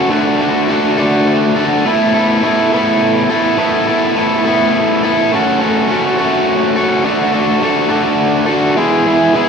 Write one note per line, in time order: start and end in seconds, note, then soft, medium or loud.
0.00 0.10 C#4 medium
0.00 0.10 F#4 medium
0.00 0.11 A4 medium
0.09 0.68 D3 medium
0.09 0.68 A3 medium
0.09 0.40 D4 medium
0.09 0.39 F#4 medium
0.09 0.39 A4 medium
0.39 0.68 D4 medium
0.39 0.69 F#4 medium
0.39 0.71 A4 medium
0.68 1.00 A3 medium
0.68 0.98 D4 medium
0.68 0.97 F#4 medium
0.68 0.97 A4 medium
0.98 1.85 D3 medium
0.98 1.85 A3 medium
0.98 1.57 D4 medium
0.98 1.56 F#4 medium
0.98 1.55 A4 medium
1.56 1.85 D4 medium
1.56 1.84 F#4 medium
1.56 1.88 A4 medium
1.85 2.43 A3 medium
1.85 2.17 B3 medium
1.85 2.15 E4 medium
1.85 2.13 A4 medium
2.14 2.43 B3 medium
2.14 2.44 E4 medium
2.14 2.45 A4 medium
2.43 2.75 A3 medium
2.43 2.73 B3 medium
2.43 2.72 E4 medium
2.43 2.72 A4 medium
2.72 3.58 A3 medium
2.72 3.31 B3 medium
2.72 3.30 E4 medium
2.72 3.29 A4 medium
3.30 3.57 B3 medium
3.30 3.58 E4 medium
3.30 3.60 A4 medium
3.58 4.16 A3 medium
3.58 3.89 B3 medium
3.58 3.88 E4 medium
3.58 3.87 A4 medium
3.87 4.16 B3 medium
3.87 4.17 E4 medium
3.87 4.18 A4 medium
4.16 4.47 A3 medium
4.16 4.46 B3 medium
4.16 4.46 E4 medium
4.16 4.45 A4 medium
4.45 5.32 A3 medium
4.45 5.04 B3 medium
4.45 5.03 E4 medium
4.45 5.03 A4 medium
5.03 5.31 B3 medium
5.03 5.30 E4 medium
5.03 5.35 A4 medium
5.32 5.88 A3 medium
5.32 5.62 C#4 medium
5.32 5.61 F#4 medium
5.32 5.59 A4 medium
5.59 5.89 C#4 medium
5.59 5.91 F#4 medium
5.59 5.92 A4 medium
5.89 6.20 A3 medium
5.89 6.20 C#4 medium
5.89 6.19 F#4 medium
5.89 6.17 A4 medium
6.18 7.04 A3 medium
6.18 6.78 C#4 medium
6.18 6.77 F#4 medium
6.18 6.75 A4 medium
6.76 7.04 C#4 medium
6.76 7.03 F#4 medium
6.76 7.03 A4 medium
7.04 7.61 D3 medium
7.04 7.61 A3 medium
7.04 7.34 D4 medium
7.04 7.33 F#4 loud
7.04 7.31 A4 loud
7.33 7.62 D4 medium
7.33 7.62 F#4 medium
7.33 7.63 A4 medium
7.62 7.90 A3 medium
7.62 7.90 D4 medium
7.62 7.89 F#4 medium
7.62 7.88 A4 medium
7.89 8.75 D3 medium
7.89 8.75 A3 medium
7.89 8.48 D4 medium
7.89 8.47 F#4 medium
7.89 8.45 A4 medium
8.46 8.75 D4 medium
8.46 8.75 F#4 medium
8.46 8.74 A4 medium
8.76 9.33 E3 medium
8.76 9.32 G#3 medium
8.76 9.07 B3 loud
8.76 9.06 E4 medium
8.76 9.04 G#4 loud
9.05 9.33 B3 medium
9.05 9.35 E4 medium
9.05 9.35 G#4 medium
9.33 9.49 G#3 medium
9.33 9.49 B3 medium
9.33 9.49 E4 medium
9.33 9.49 G#4 medium